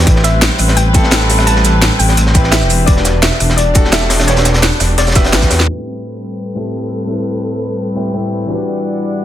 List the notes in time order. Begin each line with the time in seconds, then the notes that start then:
0.04 A1 G3 C4 E4 G4 B4, kick, closed hi-hat
0.10 B4
0.16 snare
0.24 E5, snare, closed hi-hat, shaker
0.42 snare, closed hi-hat
0.51 snare, shaker
0.58 A1, cross-stick, closed hi-hat, open hi-hat, shaker
0.68 snare
0.77 G5, closed hi-hat
0.93 C4 E4 G4 A4, kick, closed hi-hat, shaker
1.04 snare
1.11 snare, closed hi-hat
1.21 snare, shaker
1.30 snare, closed hi-hat, open hi-hat, shaker
1.39 cross-stick, snare
1.44 A1 C4 E4 G4 A5, closed hi-hat
1.50 B4
1.56 snare
1.64 snare, closed hi-hat, shaker
1.82 snare, closed hi-hat
1.91 closed hi-hat, shaker
1.99 A1 G5, closed hi-hat, open hi-hat, shaker
2.09 snare
2.17 A1, closed hi-hat
2.27 snare
2.33 C4 E4 G4 B4, kick, closed hi-hat, shaker
2.44 snare
2.51 C4 E4 G4 B4 E5, snare, closed hi-hat
2.61 E1, cross-stick, snare, shaker
2.70 E1, closed hi-hat, open hi-hat, shaker
2.85 E1 D4 F#4 G4 D5, kick, closed hi-hat
2.91 B4
2.97 snare
3.05 snare, closed hi-hat, shaker
3.22 E5, snare, closed hi-hat
3.31 snare, shaker
3.40 E1, cross-stick, closed hi-hat, open hi-hat, shaker
3.50 snare
3.57 D5, closed hi-hat
3.74 D4 F#4 G4 A4, kick, closed hi-hat, shaker
3.84 snare
3.92 E5, snare, closed hi-hat
4.02 snare, shaker
4.10 snare, closed hi-hat, open hi-hat, shaker
4.20 cross-stick, snare, closed hi-hat
4.25 E1 D4 F#4 G4 C#5, snare, closed hi-hat
4.31 B4
4.37 snare, closed hi-hat, shaker
4.45 snare, closed hi-hat, shaker
4.54 snare, closed hi-hat
4.62 B4, snare, closed hi-hat
4.72 closed hi-hat, shaker
4.80 E1, cross-stick, snare, closed hi-hat, open hi-hat, shaker
4.98 E1 D5, snare, closed hi-hat
5.07 snare, closed hi-hat, shaker
5.11 D4 F#4, snare, closed hi-hat
5.15 G4 B4 E5, kick, snare, closed hi-hat, shaker
5.24 snare, closed hi-hat
5.32 A1 D4 F#4 G4 B4, snare, closed hi-hat
5.42 kick, snare, closed hi-hat, shaker
5.50 E2, snare, closed hi-hat, open hi-hat, shaker
5.60 snare
5.65 A2 G3 C4 E4 A4 B4
6.55 A2 C4 E4 G4 A4
7.06 A2 C4 E4
7.10 G4 B4
7.95 A2 C4 E4 G4 B4
8.12 A2 C4 E4 G4 B4
8.46 E3 D4 E4 F#4 D5 F#5
8.50 G4 B4